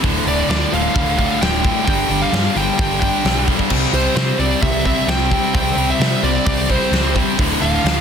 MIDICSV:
0, 0, Header, 1, 6, 480
1, 0, Start_track
1, 0, Tempo, 459418
1, 29, Time_signature, 4, 2, 24, 8
1, 8366, End_track
2, 0, Start_track
2, 0, Title_t, "Lead electric guitar"
2, 0, Program_c, 0, 29
2, 292, Note_on_c, 0, 74, 98
2, 515, Note_off_c, 0, 74, 0
2, 527, Note_on_c, 0, 74, 88
2, 764, Note_off_c, 0, 74, 0
2, 768, Note_on_c, 0, 77, 111
2, 1223, Note_off_c, 0, 77, 0
2, 1235, Note_on_c, 0, 77, 106
2, 1477, Note_on_c, 0, 79, 115
2, 1479, Note_off_c, 0, 77, 0
2, 1919, Note_off_c, 0, 79, 0
2, 1932, Note_on_c, 0, 79, 114
2, 2311, Note_off_c, 0, 79, 0
2, 2314, Note_on_c, 0, 77, 95
2, 2682, Note_off_c, 0, 77, 0
2, 2684, Note_on_c, 0, 79, 99
2, 2895, Note_off_c, 0, 79, 0
2, 2908, Note_on_c, 0, 79, 100
2, 3122, Note_off_c, 0, 79, 0
2, 3134, Note_on_c, 0, 79, 87
2, 3587, Note_off_c, 0, 79, 0
2, 4119, Note_on_c, 0, 72, 93
2, 4339, Note_off_c, 0, 72, 0
2, 4352, Note_on_c, 0, 72, 85
2, 4574, Note_off_c, 0, 72, 0
2, 4590, Note_on_c, 0, 74, 96
2, 4827, Note_off_c, 0, 74, 0
2, 4831, Note_on_c, 0, 76, 99
2, 5064, Note_off_c, 0, 76, 0
2, 5076, Note_on_c, 0, 76, 102
2, 5314, Note_on_c, 0, 79, 102
2, 5320, Note_off_c, 0, 76, 0
2, 5781, Note_off_c, 0, 79, 0
2, 5794, Note_on_c, 0, 79, 109
2, 6162, Note_off_c, 0, 79, 0
2, 6164, Note_on_c, 0, 76, 91
2, 6514, Note_off_c, 0, 76, 0
2, 6518, Note_on_c, 0, 74, 96
2, 6742, Note_off_c, 0, 74, 0
2, 6754, Note_on_c, 0, 74, 100
2, 6976, Note_off_c, 0, 74, 0
2, 7007, Note_on_c, 0, 72, 77
2, 7446, Note_off_c, 0, 72, 0
2, 7959, Note_on_c, 0, 77, 122
2, 8366, Note_off_c, 0, 77, 0
2, 8366, End_track
3, 0, Start_track
3, 0, Title_t, "Tonewheel organ"
3, 0, Program_c, 1, 16
3, 3860, Note_on_c, 1, 60, 78
3, 3863, Note_on_c, 1, 67, 76
3, 3865, Note_on_c, 1, 74, 82
3, 7668, Note_off_c, 1, 60, 0
3, 7670, Note_off_c, 1, 67, 0
3, 7671, Note_off_c, 1, 74, 0
3, 7714, Note_on_c, 1, 62, 73
3, 7714, Note_on_c, 1, 69, 77
3, 7718, Note_on_c, 1, 77, 86
3, 8366, Note_off_c, 1, 62, 0
3, 8366, Note_off_c, 1, 69, 0
3, 8366, Note_off_c, 1, 77, 0
3, 8366, End_track
4, 0, Start_track
4, 0, Title_t, "Overdriven electric guitar"
4, 0, Program_c, 2, 29
4, 22, Note_on_c, 2, 38, 113
4, 28, Note_on_c, 2, 45, 113
4, 36, Note_on_c, 2, 50, 114
4, 251, Note_off_c, 2, 38, 0
4, 261, Note_off_c, 2, 45, 0
4, 264, Note_on_c, 2, 38, 88
4, 266, Note_off_c, 2, 50, 0
4, 274, Note_on_c, 2, 45, 77
4, 278, Note_on_c, 2, 50, 94
4, 487, Note_off_c, 2, 38, 0
4, 494, Note_off_c, 2, 45, 0
4, 500, Note_on_c, 2, 38, 95
4, 503, Note_off_c, 2, 50, 0
4, 507, Note_on_c, 2, 45, 104
4, 516, Note_on_c, 2, 50, 108
4, 735, Note_off_c, 2, 38, 0
4, 740, Note_off_c, 2, 45, 0
4, 747, Note_off_c, 2, 50, 0
4, 748, Note_on_c, 2, 38, 100
4, 753, Note_on_c, 2, 45, 100
4, 759, Note_on_c, 2, 50, 113
4, 980, Note_off_c, 2, 38, 0
4, 983, Note_off_c, 2, 45, 0
4, 991, Note_off_c, 2, 50, 0
4, 992, Note_on_c, 2, 38, 104
4, 996, Note_on_c, 2, 45, 106
4, 1003, Note_on_c, 2, 50, 115
4, 1223, Note_off_c, 2, 38, 0
4, 1231, Note_off_c, 2, 45, 0
4, 1235, Note_off_c, 2, 50, 0
4, 1235, Note_on_c, 2, 38, 87
4, 1244, Note_on_c, 2, 45, 94
4, 1247, Note_on_c, 2, 50, 101
4, 1461, Note_off_c, 2, 38, 0
4, 1468, Note_off_c, 2, 45, 0
4, 1472, Note_off_c, 2, 50, 0
4, 1474, Note_on_c, 2, 38, 79
4, 1481, Note_on_c, 2, 45, 96
4, 1484, Note_on_c, 2, 50, 96
4, 1696, Note_off_c, 2, 38, 0
4, 1706, Note_off_c, 2, 45, 0
4, 1708, Note_on_c, 2, 38, 86
4, 1713, Note_off_c, 2, 50, 0
4, 1719, Note_on_c, 2, 45, 94
4, 1726, Note_on_c, 2, 50, 94
4, 1934, Note_off_c, 2, 38, 0
4, 1939, Note_off_c, 2, 45, 0
4, 1943, Note_off_c, 2, 50, 0
4, 1948, Note_on_c, 2, 43, 105
4, 1955, Note_on_c, 2, 50, 111
4, 1966, Note_on_c, 2, 55, 111
4, 2179, Note_off_c, 2, 43, 0
4, 2186, Note_off_c, 2, 50, 0
4, 2191, Note_on_c, 2, 43, 79
4, 2199, Note_on_c, 2, 50, 79
4, 2204, Note_off_c, 2, 55, 0
4, 2208, Note_on_c, 2, 55, 82
4, 2415, Note_off_c, 2, 43, 0
4, 2424, Note_off_c, 2, 50, 0
4, 2427, Note_on_c, 2, 43, 88
4, 2436, Note_on_c, 2, 50, 101
4, 2438, Note_off_c, 2, 55, 0
4, 2442, Note_on_c, 2, 55, 91
4, 2652, Note_off_c, 2, 43, 0
4, 2660, Note_off_c, 2, 50, 0
4, 2664, Note_on_c, 2, 43, 99
4, 2673, Note_on_c, 2, 50, 110
4, 2676, Note_off_c, 2, 55, 0
4, 2680, Note_on_c, 2, 55, 102
4, 2890, Note_off_c, 2, 43, 0
4, 2898, Note_off_c, 2, 50, 0
4, 2903, Note_on_c, 2, 43, 104
4, 2910, Note_off_c, 2, 55, 0
4, 2910, Note_on_c, 2, 50, 99
4, 2914, Note_on_c, 2, 55, 113
4, 3128, Note_off_c, 2, 43, 0
4, 3135, Note_off_c, 2, 50, 0
4, 3141, Note_on_c, 2, 43, 90
4, 3147, Note_on_c, 2, 50, 92
4, 3153, Note_off_c, 2, 55, 0
4, 3157, Note_on_c, 2, 55, 95
4, 3379, Note_off_c, 2, 43, 0
4, 3389, Note_off_c, 2, 50, 0
4, 3391, Note_on_c, 2, 43, 73
4, 3402, Note_on_c, 2, 50, 84
4, 3403, Note_off_c, 2, 55, 0
4, 3407, Note_on_c, 2, 55, 96
4, 3609, Note_off_c, 2, 43, 0
4, 3620, Note_off_c, 2, 50, 0
4, 3622, Note_on_c, 2, 43, 94
4, 3633, Note_on_c, 2, 50, 88
4, 3634, Note_off_c, 2, 55, 0
4, 3638, Note_on_c, 2, 55, 103
4, 3851, Note_off_c, 2, 43, 0
4, 3856, Note_off_c, 2, 50, 0
4, 3863, Note_on_c, 2, 48, 101
4, 3874, Note_off_c, 2, 55, 0
4, 3874, Note_on_c, 2, 55, 111
4, 3878, Note_on_c, 2, 60, 112
4, 4097, Note_off_c, 2, 48, 0
4, 4101, Note_on_c, 2, 48, 82
4, 4107, Note_off_c, 2, 55, 0
4, 4111, Note_on_c, 2, 55, 89
4, 4112, Note_off_c, 2, 60, 0
4, 4116, Note_on_c, 2, 60, 97
4, 4334, Note_off_c, 2, 48, 0
4, 4339, Note_on_c, 2, 48, 87
4, 4342, Note_off_c, 2, 55, 0
4, 4346, Note_off_c, 2, 60, 0
4, 4346, Note_on_c, 2, 55, 98
4, 4350, Note_on_c, 2, 60, 93
4, 4578, Note_off_c, 2, 48, 0
4, 4582, Note_on_c, 2, 48, 93
4, 4588, Note_off_c, 2, 55, 0
4, 4590, Note_off_c, 2, 60, 0
4, 4592, Note_on_c, 2, 55, 101
4, 4594, Note_on_c, 2, 60, 106
4, 4806, Note_off_c, 2, 48, 0
4, 4816, Note_off_c, 2, 55, 0
4, 4819, Note_off_c, 2, 60, 0
4, 4819, Note_on_c, 2, 48, 96
4, 4828, Note_on_c, 2, 55, 97
4, 4832, Note_on_c, 2, 60, 116
4, 5041, Note_off_c, 2, 48, 0
4, 5047, Note_off_c, 2, 55, 0
4, 5054, Note_on_c, 2, 48, 103
4, 5056, Note_off_c, 2, 60, 0
4, 5059, Note_on_c, 2, 55, 97
4, 5069, Note_on_c, 2, 60, 91
4, 5286, Note_off_c, 2, 48, 0
4, 5294, Note_off_c, 2, 55, 0
4, 5298, Note_off_c, 2, 60, 0
4, 5298, Note_on_c, 2, 48, 98
4, 5306, Note_on_c, 2, 55, 87
4, 5310, Note_on_c, 2, 60, 106
4, 5522, Note_off_c, 2, 48, 0
4, 5531, Note_off_c, 2, 55, 0
4, 5534, Note_on_c, 2, 48, 76
4, 5535, Note_off_c, 2, 60, 0
4, 5543, Note_on_c, 2, 55, 94
4, 5547, Note_on_c, 2, 60, 96
4, 5766, Note_off_c, 2, 48, 0
4, 5775, Note_off_c, 2, 55, 0
4, 5779, Note_on_c, 2, 48, 100
4, 5781, Note_off_c, 2, 60, 0
4, 5787, Note_on_c, 2, 55, 113
4, 5793, Note_on_c, 2, 60, 111
4, 6007, Note_off_c, 2, 48, 0
4, 6018, Note_off_c, 2, 55, 0
4, 6020, Note_on_c, 2, 48, 88
4, 6022, Note_off_c, 2, 60, 0
4, 6030, Note_on_c, 2, 55, 89
4, 6035, Note_on_c, 2, 60, 82
4, 6245, Note_off_c, 2, 48, 0
4, 6254, Note_off_c, 2, 55, 0
4, 6257, Note_on_c, 2, 48, 92
4, 6260, Note_off_c, 2, 60, 0
4, 6266, Note_on_c, 2, 55, 94
4, 6273, Note_on_c, 2, 60, 107
4, 6484, Note_off_c, 2, 48, 0
4, 6496, Note_off_c, 2, 55, 0
4, 6497, Note_on_c, 2, 48, 97
4, 6502, Note_off_c, 2, 60, 0
4, 6509, Note_on_c, 2, 55, 100
4, 6515, Note_on_c, 2, 60, 98
4, 6721, Note_off_c, 2, 48, 0
4, 6734, Note_off_c, 2, 55, 0
4, 6734, Note_on_c, 2, 48, 106
4, 6738, Note_off_c, 2, 60, 0
4, 6747, Note_on_c, 2, 55, 112
4, 6750, Note_on_c, 2, 60, 117
4, 6965, Note_off_c, 2, 48, 0
4, 6973, Note_off_c, 2, 55, 0
4, 6977, Note_on_c, 2, 48, 79
4, 6980, Note_off_c, 2, 60, 0
4, 6986, Note_on_c, 2, 55, 94
4, 6993, Note_on_c, 2, 60, 98
4, 7210, Note_off_c, 2, 48, 0
4, 7217, Note_off_c, 2, 55, 0
4, 7222, Note_on_c, 2, 48, 83
4, 7225, Note_off_c, 2, 60, 0
4, 7230, Note_on_c, 2, 55, 86
4, 7237, Note_on_c, 2, 60, 98
4, 7459, Note_off_c, 2, 48, 0
4, 7465, Note_off_c, 2, 55, 0
4, 7472, Note_on_c, 2, 48, 93
4, 7473, Note_off_c, 2, 60, 0
4, 7478, Note_on_c, 2, 55, 98
4, 7486, Note_on_c, 2, 60, 104
4, 7697, Note_off_c, 2, 48, 0
4, 7700, Note_off_c, 2, 55, 0
4, 7704, Note_off_c, 2, 60, 0
4, 7707, Note_on_c, 2, 38, 106
4, 7715, Note_on_c, 2, 45, 111
4, 7724, Note_on_c, 2, 50, 123
4, 7941, Note_off_c, 2, 38, 0
4, 7942, Note_off_c, 2, 45, 0
4, 7945, Note_on_c, 2, 38, 74
4, 7954, Note_on_c, 2, 45, 85
4, 7958, Note_off_c, 2, 50, 0
4, 7962, Note_on_c, 2, 50, 86
4, 8183, Note_off_c, 2, 45, 0
4, 8185, Note_off_c, 2, 38, 0
4, 8190, Note_on_c, 2, 38, 93
4, 8195, Note_on_c, 2, 45, 98
4, 8200, Note_off_c, 2, 50, 0
4, 8204, Note_on_c, 2, 50, 103
4, 8366, Note_off_c, 2, 38, 0
4, 8366, Note_off_c, 2, 45, 0
4, 8366, Note_off_c, 2, 50, 0
4, 8366, End_track
5, 0, Start_track
5, 0, Title_t, "Fingered electric bass"
5, 0, Program_c, 3, 33
5, 39, Note_on_c, 3, 26, 97
5, 185, Note_off_c, 3, 26, 0
5, 270, Note_on_c, 3, 26, 89
5, 418, Note_off_c, 3, 26, 0
5, 514, Note_on_c, 3, 38, 101
5, 661, Note_off_c, 3, 38, 0
5, 751, Note_on_c, 3, 26, 96
5, 899, Note_off_c, 3, 26, 0
5, 999, Note_on_c, 3, 26, 90
5, 1293, Note_off_c, 3, 26, 0
5, 1474, Note_on_c, 3, 26, 102
5, 1769, Note_off_c, 3, 26, 0
5, 1955, Note_on_c, 3, 31, 110
5, 2102, Note_off_c, 3, 31, 0
5, 2186, Note_on_c, 3, 31, 90
5, 2336, Note_off_c, 3, 31, 0
5, 2430, Note_on_c, 3, 43, 92
5, 2578, Note_off_c, 3, 43, 0
5, 2667, Note_on_c, 3, 31, 94
5, 2816, Note_off_c, 3, 31, 0
5, 2917, Note_on_c, 3, 31, 102
5, 3212, Note_off_c, 3, 31, 0
5, 3389, Note_on_c, 3, 35, 99
5, 3687, Note_off_c, 3, 35, 0
5, 3868, Note_on_c, 3, 36, 101
5, 4017, Note_off_c, 3, 36, 0
5, 4104, Note_on_c, 3, 36, 94
5, 4254, Note_off_c, 3, 36, 0
5, 4346, Note_on_c, 3, 48, 96
5, 4496, Note_off_c, 3, 48, 0
5, 4583, Note_on_c, 3, 36, 102
5, 4734, Note_off_c, 3, 36, 0
5, 4830, Note_on_c, 3, 36, 91
5, 5128, Note_off_c, 3, 36, 0
5, 5300, Note_on_c, 3, 36, 101
5, 5600, Note_off_c, 3, 36, 0
5, 5796, Note_on_c, 3, 36, 103
5, 5943, Note_off_c, 3, 36, 0
5, 6021, Note_on_c, 3, 36, 90
5, 6173, Note_off_c, 3, 36, 0
5, 6262, Note_on_c, 3, 48, 94
5, 6413, Note_off_c, 3, 48, 0
5, 6505, Note_on_c, 3, 36, 96
5, 6656, Note_off_c, 3, 36, 0
5, 6754, Note_on_c, 3, 36, 93
5, 7050, Note_off_c, 3, 36, 0
5, 7221, Note_on_c, 3, 37, 98
5, 7522, Note_off_c, 3, 37, 0
5, 7719, Note_on_c, 3, 26, 101
5, 7865, Note_off_c, 3, 26, 0
5, 7954, Note_on_c, 3, 26, 101
5, 8102, Note_off_c, 3, 26, 0
5, 8192, Note_on_c, 3, 38, 92
5, 8340, Note_off_c, 3, 38, 0
5, 8366, End_track
6, 0, Start_track
6, 0, Title_t, "Drums"
6, 40, Note_on_c, 9, 36, 115
6, 41, Note_on_c, 9, 46, 96
6, 144, Note_off_c, 9, 36, 0
6, 145, Note_off_c, 9, 46, 0
6, 281, Note_on_c, 9, 46, 63
6, 385, Note_off_c, 9, 46, 0
6, 522, Note_on_c, 9, 46, 92
6, 532, Note_on_c, 9, 38, 117
6, 626, Note_off_c, 9, 46, 0
6, 636, Note_off_c, 9, 38, 0
6, 765, Note_on_c, 9, 46, 70
6, 869, Note_off_c, 9, 46, 0
6, 1000, Note_on_c, 9, 36, 116
6, 1005, Note_on_c, 9, 46, 85
6, 1104, Note_off_c, 9, 36, 0
6, 1109, Note_off_c, 9, 46, 0
6, 1239, Note_on_c, 9, 36, 81
6, 1240, Note_on_c, 9, 46, 60
6, 1344, Note_off_c, 9, 36, 0
6, 1345, Note_off_c, 9, 46, 0
6, 1481, Note_on_c, 9, 46, 86
6, 1492, Note_on_c, 9, 38, 125
6, 1586, Note_off_c, 9, 46, 0
6, 1596, Note_off_c, 9, 38, 0
6, 1718, Note_on_c, 9, 36, 94
6, 1720, Note_on_c, 9, 46, 59
6, 1823, Note_off_c, 9, 36, 0
6, 1825, Note_off_c, 9, 46, 0
6, 1959, Note_on_c, 9, 36, 118
6, 1962, Note_on_c, 9, 46, 95
6, 2064, Note_off_c, 9, 36, 0
6, 2066, Note_off_c, 9, 46, 0
6, 2198, Note_on_c, 9, 46, 62
6, 2303, Note_off_c, 9, 46, 0
6, 2436, Note_on_c, 9, 46, 86
6, 2447, Note_on_c, 9, 38, 123
6, 2541, Note_off_c, 9, 46, 0
6, 2551, Note_off_c, 9, 38, 0
6, 2676, Note_on_c, 9, 46, 69
6, 2780, Note_off_c, 9, 46, 0
6, 2911, Note_on_c, 9, 46, 97
6, 2916, Note_on_c, 9, 36, 122
6, 3016, Note_off_c, 9, 46, 0
6, 3020, Note_off_c, 9, 36, 0
6, 3151, Note_on_c, 9, 46, 65
6, 3154, Note_on_c, 9, 36, 87
6, 3255, Note_off_c, 9, 46, 0
6, 3258, Note_off_c, 9, 36, 0
6, 3394, Note_on_c, 9, 46, 98
6, 3404, Note_on_c, 9, 38, 112
6, 3498, Note_off_c, 9, 46, 0
6, 3509, Note_off_c, 9, 38, 0
6, 3634, Note_on_c, 9, 36, 92
6, 3634, Note_on_c, 9, 46, 71
6, 3739, Note_off_c, 9, 36, 0
6, 3739, Note_off_c, 9, 46, 0
6, 3753, Note_on_c, 9, 36, 79
6, 3858, Note_off_c, 9, 36, 0
6, 3866, Note_on_c, 9, 49, 123
6, 3872, Note_on_c, 9, 36, 98
6, 3970, Note_off_c, 9, 49, 0
6, 3976, Note_off_c, 9, 36, 0
6, 4108, Note_on_c, 9, 46, 66
6, 4212, Note_off_c, 9, 46, 0
6, 4344, Note_on_c, 9, 46, 94
6, 4355, Note_on_c, 9, 38, 119
6, 4449, Note_off_c, 9, 46, 0
6, 4459, Note_off_c, 9, 38, 0
6, 4593, Note_on_c, 9, 46, 70
6, 4697, Note_off_c, 9, 46, 0
6, 4832, Note_on_c, 9, 46, 94
6, 4833, Note_on_c, 9, 36, 118
6, 4936, Note_off_c, 9, 46, 0
6, 4937, Note_off_c, 9, 36, 0
6, 5070, Note_on_c, 9, 46, 60
6, 5072, Note_on_c, 9, 36, 79
6, 5174, Note_off_c, 9, 46, 0
6, 5177, Note_off_c, 9, 36, 0
6, 5310, Note_on_c, 9, 46, 86
6, 5320, Note_on_c, 9, 38, 123
6, 5414, Note_off_c, 9, 46, 0
6, 5425, Note_off_c, 9, 38, 0
6, 5553, Note_on_c, 9, 36, 82
6, 5553, Note_on_c, 9, 46, 62
6, 5657, Note_off_c, 9, 36, 0
6, 5657, Note_off_c, 9, 46, 0
6, 5794, Note_on_c, 9, 36, 113
6, 5796, Note_on_c, 9, 46, 85
6, 5899, Note_off_c, 9, 36, 0
6, 5900, Note_off_c, 9, 46, 0
6, 6035, Note_on_c, 9, 46, 61
6, 6139, Note_off_c, 9, 46, 0
6, 6275, Note_on_c, 9, 46, 84
6, 6285, Note_on_c, 9, 38, 121
6, 6379, Note_off_c, 9, 46, 0
6, 6390, Note_off_c, 9, 38, 0
6, 6516, Note_on_c, 9, 46, 65
6, 6620, Note_off_c, 9, 46, 0
6, 6750, Note_on_c, 9, 46, 101
6, 6755, Note_on_c, 9, 36, 125
6, 6855, Note_off_c, 9, 46, 0
6, 6859, Note_off_c, 9, 36, 0
6, 6995, Note_on_c, 9, 46, 69
6, 6996, Note_on_c, 9, 36, 91
6, 7099, Note_off_c, 9, 46, 0
6, 7100, Note_off_c, 9, 36, 0
6, 7238, Note_on_c, 9, 46, 96
6, 7248, Note_on_c, 9, 38, 115
6, 7342, Note_off_c, 9, 46, 0
6, 7353, Note_off_c, 9, 38, 0
6, 7478, Note_on_c, 9, 36, 84
6, 7480, Note_on_c, 9, 46, 70
6, 7583, Note_off_c, 9, 36, 0
6, 7584, Note_off_c, 9, 46, 0
6, 7719, Note_on_c, 9, 46, 104
6, 7720, Note_on_c, 9, 36, 117
6, 7823, Note_off_c, 9, 46, 0
6, 7825, Note_off_c, 9, 36, 0
6, 7966, Note_on_c, 9, 46, 57
6, 8071, Note_off_c, 9, 46, 0
6, 8208, Note_on_c, 9, 46, 95
6, 8219, Note_on_c, 9, 38, 117
6, 8313, Note_off_c, 9, 46, 0
6, 8323, Note_off_c, 9, 38, 0
6, 8366, End_track
0, 0, End_of_file